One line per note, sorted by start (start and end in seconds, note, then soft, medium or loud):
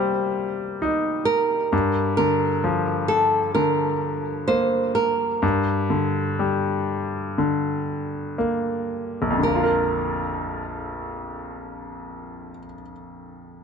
0.00 1.69 C3 medium
0.00 1.74 G3 soft
0.00 0.78 A#3 soft
0.00 1.23 C5 medium
0.82 1.70 D#4 soft
1.25 2.16 A#4 medium
1.72 5.39 G2 medium
2.17 3.54 D3 soft
2.17 3.08 A#4 medium
2.64 4.44 F3 soft
3.08 3.54 A4 medium
3.55 5.39 D3 soft
3.55 4.47 A#4 medium
4.48 5.40 A#3 soft
4.48 4.92 C5 medium
4.95 8.34 A#4 medium
5.42 9.38 G2 medium
5.90 7.37 D3 soft
6.39 8.34 G3 soft
7.38 9.37 D3 soft
8.38 9.39 A#3 soft
9.22 12.49 A#1 soft
9.30 12.57 F2 soft
9.38 12.65 D3 soft
9.43 12.74 A#3 soft
9.43 12.70 A#4 medium
9.55 12.82 F4 soft
9.63 12.90 A#4 soft